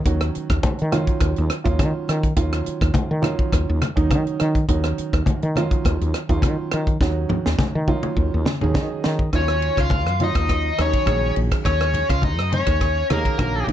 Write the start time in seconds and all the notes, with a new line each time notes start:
0.04 D#2 D#3 F#3 C#4 F#4, kick, closed hi-hat, muted conga
0.21 cross-stick, closed hi-hat
0.35 muted fretless electric bass stroke, closed hi-hat, muted conga
0.50 D#2, kick, cross-stick, closed hi-hat
0.63 muted fretless electric bass stroke, kick, closed hi-hat, high conga
0.78 D#3, closed hi-hat
0.92 D#3 F#3 C#4 F4, cross-stick, closed hi-hat, high conga
1.07 muted fretless electric bass stroke, kick, closed hi-hat
1.20 D#2, kick, cross-stick, closed hi-hat, muted conga
1.36 D#2, closed hi-hat
1.50 cross-stick, closed hi-hat
1.64 D#2 D#3 F#3 C#4 F4, kick, closed hi-hat
1.79 D#3, kick, cross-stick, closed hi-hat, high conga
2.08 D#3, cross-stick, closed hi-hat, muted conga
2.23 kick, closed hi-hat
2.36 D#2 D#3 F#3 C#4 F4, kick, closed hi-hat, muted conga
2.53 cross-stick, closed hi-hat
2.65 muted fretless electric bass stroke, closed hi-hat, muted conga
2.81 D#2, kick, cross-stick, closed hi-hat
2.94 kick, closed hi-hat, high conga
3.11 D#3
3.22 D#3 F#3 C#4 F4, cross-stick, closed hi-hat, high conga
3.39 muted fretless electric bass stroke, kick
3.52 D#2, kick, cross-stick, closed hi-hat, muted conga
3.69 D#2
3.82 cross-stick, closed hi-hat, high conga
3.96 D#2 D#3 F#3 C#4 D#4, kick, closed hi-hat
4.10 D#3, kick, cross-stick, closed hi-hat, high conga
4.27 closed hi-hat
4.40 D#3, cross-stick, closed hi-hat, muted conga
4.55 kick, closed hi-hat
4.68 D#2 D#3 F#3 C#4 F#4, kick, closed hi-hat, muted conga
4.84 cross-stick, closed hi-hat
4.98 muted fretless electric bass stroke, closed hi-hat, muted conga
5.13 D#2, kick, cross-stick, closed hi-hat
5.26 kick, closed hi-hat, high conga
5.42 D#3, closed hi-hat
5.56 D#3 F#3 C#4 F4, cross-stick, closed hi-hat, high conga
5.71 muted fretless electric bass stroke, kick, closed hi-hat
5.84 D#2, kick, cross-stick, closed hi-hat, muted conga
6.01 D#2, closed hi-hat
6.14 cross-stick, closed hi-hat
6.29 D#2 D#3 F#3 C#4 F4, kick, closed hi-hat
6.42 D#3, kick, cross-stick, closed hi-hat, high conga
6.71 D#3, cross-stick, closed hi-hat, muted conga
6.87 kick, closed hi-hat
7.01 D#2 D#3 F#3 C#4 F#4, kick, snare, muted conga
7.29 muted fretless electric bass stroke, high tom, muted conga, low conga
7.46 D#2, snare
7.58 kick, snare, high conga
7.75 D#3
7.87 D#3 F#3 C#4 F4, kick, high conga
8.03 muted fretless electric bass stroke, mid tom
8.17 D#2, kick, muted conga
8.34 D#2
8.45 snare, high conga
8.61 D#2 D#3 F#3 C#4 G#4, mid tom
8.74 D#3 D#5, kick, snare, high conga
9.03 D#3, snare, muted conga
9.19 kick
9.33 D#2 D#3 F#3 C#4 F4 C#5, kick, cross-stick, ride, muted conga
9.48 cross-stick
9.62 ride
9.77 C#2 F4 F5, kick, cross-stick, ride
9.90 kick, ride, high conga
10.07 F#2, cross-stick
10.20 D#3 F#3 C#4 F4 D#5, ride, muted conga, high conga
10.24 D#4
10.35 D#2, kick, cross-stick, ride
10.49 kick, cross-stick, ride, muted conga
10.78 D#2 D#3 F#3 C#4 D#4 C#5, cross-stick, ride, muted conga
10.93 kick, ride
11.06 A#1 D#3 F#3 C#4 G#4, kick, cross-stick, ride, high conga
11.36 A#1, ride
11.52 muted fretless electric bass stroke, kick, cross-stick, ride
11.65 D#2 C#4 C#5, kick, cross-stick, ride, muted conga
11.81 cross-stick
11.94 ride, low conga
12.10 C#2 F4 F5, kick, cross-stick, ride
12.22 D#4 D#5, kick, ride, high conga
12.38 F#2, cross-stick
12.52 C#4 C#5, ride, muted conga, high conga
12.66 D#2, kick, cross-stick, ride
12.81 kick, cross-stick, ride, muted conga
13.10 D#2 D#3 F#3 A#3 C#4 G#4 A#4, cross-stick, ride, muted conga, high conga
13.25 kick, ride
13.38 A#1 D#3 F#3 C#4 F#4, kick, cross-stick, ride, high conga
13.67 A#1 D#3 F#3 C#4 D#4, ride, low conga